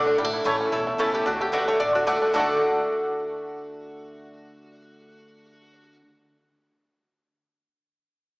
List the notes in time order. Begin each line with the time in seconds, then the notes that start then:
Already playing: B1 A2 D3 A3 D4 F#4
0.06 D4
0.18 A1 A2 G3
0.24 A3
0.33 E4
0.44 A1 E3 A3 C#4 E4 C#5 A5
0.61 C#4
0.72 B1 E2 E4 A4
0.87 A3
0.98 C#2 E3 A3 C#4 E4 C#5 A5
1.14 A3 G4
1.26 D2 D3 D4 F#4
1.41 A3 G4
1.52 D3 A3 D4 F#4 B4 D5 F#5
1.68 A3 C#5
1.80 A1 A2 D4 D5
1.95 D4 F#4
2.07 D3 A3 D4 F#4 D5 F#5
2.22 D4
2.33 D2 D3 A3 D4 F#4 D5 F#5
2.38 F#4 A4